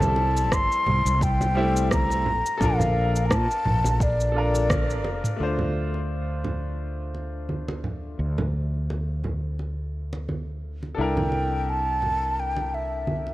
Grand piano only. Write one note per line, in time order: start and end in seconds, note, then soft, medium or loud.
0.00 1.51 G3 medium
0.00 1.52 C4 medium
0.00 1.53 E4 medium
0.00 1.54 A4 medium
1.55 2.23 G3 medium
1.55 2.25 A3 medium
1.55 2.24 C4 medium
1.55 2.24 E4 medium
2.58 4.31 D4 medium
2.58 4.30 A4 medium
2.62 4.32 F4 medium
2.62 4.33 A#4 medium
4.32 5.36 D4 medium
4.32 5.35 A4 medium
4.36 5.37 F4 medium
4.36 5.38 A#4 medium
5.37 10.93 A3 medium
5.37 10.94 D4 medium
5.41 10.95 F4 medium
5.41 10.96 C5 medium
10.95 13.34 D4 medium
10.95 13.34 A4 medium
10.99 13.34 E4 medium
10.99 13.34 A#4 medium